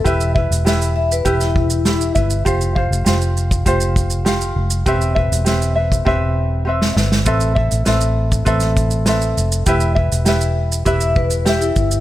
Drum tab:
SH |xx-xxx-xxx-xxxxx|xx-xxxxxxxxxxx-x|xx-xxx-x--------|xx-xxx-xxxxxxxxx|
SD |----o----o--o---|----o-------o---|----o--------ooo|----o----o--o---|
BD |o-o-----o-o---o-|o-o----oo-o-----|o-o----oo-------|o-o----oo-o-----|

SH |xx-xxx-xxx-xxxxx|
SD |----o-------o---|
BD |o-o-----o-o---o-|